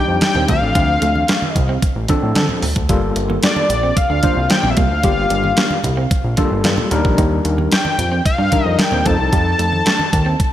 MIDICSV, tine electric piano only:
0, 0, Header, 1, 2, 480
1, 0, Start_track
1, 0, Key_signature, -2, "minor"
1, 0, Tempo, 535714
1, 675, Time_signature, 4, 2, 24, 8
1, 9434, End_track
2, 0, Start_track
2, 0, Title_t, "Tine electric piano"
2, 0, Program_c, 0, 4
2, 0, Note_on_c, 0, 55, 65
2, 0, Note_on_c, 0, 62, 66
2, 0, Note_on_c, 0, 63, 63
2, 0, Note_on_c, 0, 67, 80
2, 427, Note_off_c, 0, 62, 0
2, 432, Note_off_c, 0, 55, 0
2, 432, Note_on_c, 0, 53, 76
2, 434, Note_off_c, 0, 63, 0
2, 435, Note_on_c, 0, 60, 63
2, 436, Note_off_c, 0, 67, 0
2, 438, Note_on_c, 0, 62, 61
2, 440, Note_on_c, 0, 69, 80
2, 1201, Note_off_c, 0, 53, 0
2, 1203, Note_off_c, 0, 60, 0
2, 1204, Note_off_c, 0, 62, 0
2, 1205, Note_off_c, 0, 69, 0
2, 1870, Note_on_c, 0, 53, 90
2, 1873, Note_on_c, 0, 60, 71
2, 1875, Note_on_c, 0, 62, 75
2, 1879, Note_on_c, 0, 69, 91
2, 2366, Note_off_c, 0, 53, 0
2, 2367, Note_off_c, 0, 60, 0
2, 2368, Note_off_c, 0, 62, 0
2, 2370, Note_off_c, 0, 69, 0
2, 2591, Note_on_c, 0, 55, 87
2, 2593, Note_on_c, 0, 58, 81
2, 2596, Note_on_c, 0, 65, 75
2, 2598, Note_on_c, 0, 69, 88
2, 3250, Note_off_c, 0, 55, 0
2, 3251, Note_off_c, 0, 58, 0
2, 3252, Note_off_c, 0, 65, 0
2, 3254, Note_off_c, 0, 69, 0
2, 3791, Note_on_c, 0, 55, 67
2, 3795, Note_on_c, 0, 58, 62
2, 3797, Note_on_c, 0, 65, 69
2, 3798, Note_on_c, 0, 72, 75
2, 4286, Note_off_c, 0, 55, 0
2, 4288, Note_off_c, 0, 58, 0
2, 4289, Note_off_c, 0, 65, 0
2, 4289, Note_off_c, 0, 72, 0
2, 4511, Note_on_c, 0, 55, 71
2, 4514, Note_on_c, 0, 58, 70
2, 4517, Note_on_c, 0, 65, 67
2, 4519, Note_on_c, 0, 67, 78
2, 5170, Note_off_c, 0, 55, 0
2, 5171, Note_off_c, 0, 58, 0
2, 5173, Note_off_c, 0, 65, 0
2, 5174, Note_off_c, 0, 67, 0
2, 5709, Note_on_c, 0, 55, 78
2, 5712, Note_on_c, 0, 58, 77
2, 5713, Note_on_c, 0, 65, 80
2, 5717, Note_on_c, 0, 69, 92
2, 6179, Note_off_c, 0, 55, 0
2, 6190, Note_on_c, 0, 55, 86
2, 6193, Note_off_c, 0, 58, 0
2, 6193, Note_on_c, 0, 62, 79
2, 6194, Note_off_c, 0, 65, 0
2, 6195, Note_off_c, 0, 69, 0
2, 6195, Note_on_c, 0, 63, 79
2, 6197, Note_on_c, 0, 70, 92
2, 6960, Note_off_c, 0, 55, 0
2, 6962, Note_off_c, 0, 62, 0
2, 6963, Note_off_c, 0, 63, 0
2, 6964, Note_off_c, 0, 70, 0
2, 7633, Note_on_c, 0, 55, 71
2, 7634, Note_on_c, 0, 62, 64
2, 7638, Note_on_c, 0, 63, 65
2, 7640, Note_on_c, 0, 70, 75
2, 8107, Note_off_c, 0, 63, 0
2, 8113, Note_off_c, 0, 55, 0
2, 8113, Note_on_c, 0, 53, 74
2, 8114, Note_off_c, 0, 62, 0
2, 8116, Note_on_c, 0, 60, 64
2, 8117, Note_off_c, 0, 70, 0
2, 8118, Note_on_c, 0, 63, 67
2, 8121, Note_on_c, 0, 69, 75
2, 8882, Note_off_c, 0, 53, 0
2, 8883, Note_off_c, 0, 60, 0
2, 8884, Note_off_c, 0, 63, 0
2, 8886, Note_off_c, 0, 69, 0
2, 9434, End_track
0, 0, End_of_file